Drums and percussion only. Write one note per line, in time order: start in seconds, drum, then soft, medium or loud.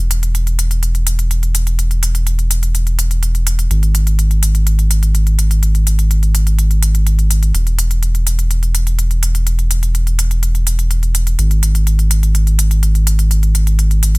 0.11 closed hi-hat medium
0.23 closed hi-hat soft
0.35 closed hi-hat soft
0.47 closed hi-hat soft
0.59 closed hi-hat medium
0.71 closed hi-hat soft
0.83 closed hi-hat soft
0.95 closed hi-hat soft
1.07 closed hi-hat medium
1.19 closed hi-hat soft
1.31 closed hi-hat soft
1.43 closed hi-hat soft
1.55 closed hi-hat medium
1.67 closed hi-hat soft
1.79 closed hi-hat soft
1.91 closed hi-hat soft
2.03 closed hi-hat medium
2.15 closed hi-hat soft
2.27 closed hi-hat soft
2.39 closed hi-hat soft
2.51 closed hi-hat medium
2.63 closed hi-hat soft
2.75 closed hi-hat soft
2.87 closed hi-hat soft
2.99 closed hi-hat medium
3.11 closed hi-hat soft
3.23 closed hi-hat soft
3.35 closed hi-hat soft
3.47 closed hi-hat medium
3.59 closed hi-hat soft
3.71 closed hi-hat soft
3.83 closed hi-hat soft
3.95 closed hi-hat medium
4.07 closed hi-hat soft
4.19 closed hi-hat soft
4.31 closed hi-hat soft
4.43 closed hi-hat medium
4.55 closed hi-hat soft
4.67 closed hi-hat soft
4.79 closed hi-hat soft
4.91 closed hi-hat medium
5.03 closed hi-hat soft
5.15 closed hi-hat soft
5.27 closed hi-hat soft
5.39 closed hi-hat medium
5.51 closed hi-hat soft
5.63 closed hi-hat soft
5.75 closed hi-hat soft
5.87 closed hi-hat medium
5.99 closed hi-hat soft
6.11 closed hi-hat soft
6.23 closed hi-hat soft
6.35 closed hi-hat medium
6.47 closed hi-hat soft
6.59 closed hi-hat soft
6.71 closed hi-hat soft
6.83 closed hi-hat medium
6.95 closed hi-hat soft
7.07 closed hi-hat soft
7.19 closed hi-hat soft
7.31 closed hi-hat medium
7.43 closed hi-hat soft
7.55 closed hi-hat soft
7.67 closed hi-hat soft
7.79 closed hi-hat medium
7.91 closed hi-hat soft
8.03 closed hi-hat soft
8.15 closed hi-hat soft
8.27 closed hi-hat medium
8.39 closed hi-hat soft
8.51 closed hi-hat soft
8.63 closed hi-hat soft
8.75 closed hi-hat medium
8.87 closed hi-hat soft
8.99 closed hi-hat soft
9.11 closed hi-hat soft
9.23 closed hi-hat medium
9.35 closed hi-hat soft
9.47 closed hi-hat soft
9.59 closed hi-hat soft
9.71 closed hi-hat medium
9.83 closed hi-hat soft
9.95 closed hi-hat soft
10.07 closed hi-hat soft
10.19 closed hi-hat medium
10.31 closed hi-hat soft
10.43 closed hi-hat soft
10.55 closed hi-hat soft
10.67 closed hi-hat medium
10.79 closed hi-hat soft
10.91 closed hi-hat soft
11.03 closed hi-hat soft
11.15 closed hi-hat medium
11.27 closed hi-hat soft
11.39 closed hi-hat soft
11.51 closed hi-hat soft
11.63 closed hi-hat medium
11.75 closed hi-hat soft
11.87 closed hi-hat soft
11.99 closed hi-hat soft
12.11 closed hi-hat medium
12.23 closed hi-hat soft
12.35 closed hi-hat soft
12.47 closed hi-hat soft
12.59 closed hi-hat medium
12.71 closed hi-hat soft
12.83 closed hi-hat soft
12.95 closed hi-hat soft
13.07 closed hi-hat medium
13.19 closed hi-hat soft
13.31 closed hi-hat soft
13.43 closed hi-hat soft
13.55 closed hi-hat medium
13.67 closed hi-hat soft
13.79 closed hi-hat soft
13.91 closed hi-hat soft
14.03 closed hi-hat medium
14.15 closed hi-hat soft